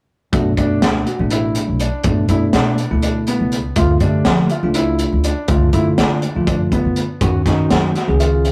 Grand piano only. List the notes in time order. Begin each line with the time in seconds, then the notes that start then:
0.33 F#4
0.58 D4
1.06 F#4
1.31 E4
1.81 D4
2.29 E4
2.54 D4
3.03 D4
3.28 B3
3.77 F4
4.01 D4
4.51 F4
4.75 E4
5.25 D4
5.73 E4
5.98 D4
6.47 D4
6.73 B3
7.22 F#4
7.47 D#4
7.96 F#4
8.20 F4